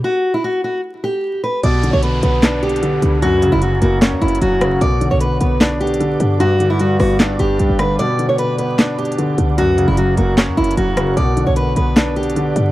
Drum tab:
HH |------------------------|x--x--x--x--x--xxxx--x--|x--x--x--x--x--xxxx--x--|x--x--x--x--x--xxxx--x--|
CP |------------------------|------------x-----------|------------x-----------|------------x-----------|
SD |------------------------|------------o-----------|------------o--------r--|------------o-----------|

HH |x--x--x--o--x--x--x--x--|x--x--x--x--x--xxxx--x--|x--x--x--x--x--xxxx--x--|x--x--x--x--x--xxxx--x--|
CP |------------x-----------|------------x-----------|------------x-----------|------------x-----------|
SD |---------r--o--------r--|------------o-----------|------------o--------r--|------------o-----------|